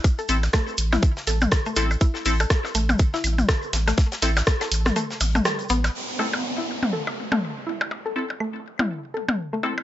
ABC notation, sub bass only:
X:1
M:4/4
L:1/8
Q:"Swing 16ths" 1/4=122
K:Am
V:1 name="Sub bass" clef=bass
z A,,, z A,,, z A,,, z A,,, | z A,,, z A,,, z A,,, z A,,, | z A,,, z A,,, z A,,, z A,,, | z8 |
z8 |]